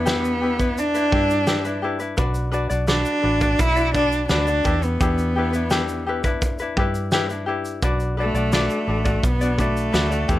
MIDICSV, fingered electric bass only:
0, 0, Header, 1, 2, 480
1, 0, Start_track
1, 0, Key_signature, 1, "minor"
1, 0, Tempo, 705219
1, 1485, Time_signature, 4, 2, 24, 8
1, 7073, End_track
2, 0, Start_track
2, 0, Title_t, "Fingered electric bass"
2, 0, Program_c, 0, 33
2, 0, Note_on_c, 0, 40, 102
2, 737, Note_off_c, 0, 40, 0
2, 766, Note_on_c, 0, 43, 86
2, 1458, Note_off_c, 0, 43, 0
2, 1485, Note_on_c, 0, 35, 100
2, 1818, Note_off_c, 0, 35, 0
2, 1842, Note_on_c, 0, 35, 88
2, 2064, Note_off_c, 0, 35, 0
2, 2203, Note_on_c, 0, 33, 90
2, 2425, Note_off_c, 0, 33, 0
2, 2446, Note_on_c, 0, 35, 85
2, 2899, Note_off_c, 0, 35, 0
2, 2927, Note_on_c, 0, 38, 91
2, 3147, Note_off_c, 0, 38, 0
2, 3163, Note_on_c, 0, 40, 96
2, 3385, Note_off_c, 0, 40, 0
2, 3408, Note_on_c, 0, 40, 113
2, 4579, Note_off_c, 0, 40, 0
2, 4605, Note_on_c, 0, 43, 87
2, 5297, Note_off_c, 0, 43, 0
2, 5325, Note_on_c, 0, 35, 101
2, 5658, Note_off_c, 0, 35, 0
2, 5677, Note_on_c, 0, 35, 81
2, 5901, Note_off_c, 0, 35, 0
2, 6041, Note_on_c, 0, 33, 91
2, 6263, Note_off_c, 0, 33, 0
2, 6286, Note_on_c, 0, 35, 89
2, 6738, Note_off_c, 0, 35, 0
2, 6763, Note_on_c, 0, 38, 90
2, 6984, Note_off_c, 0, 38, 0
2, 7005, Note_on_c, 0, 40, 99
2, 7073, Note_off_c, 0, 40, 0
2, 7073, End_track
0, 0, End_of_file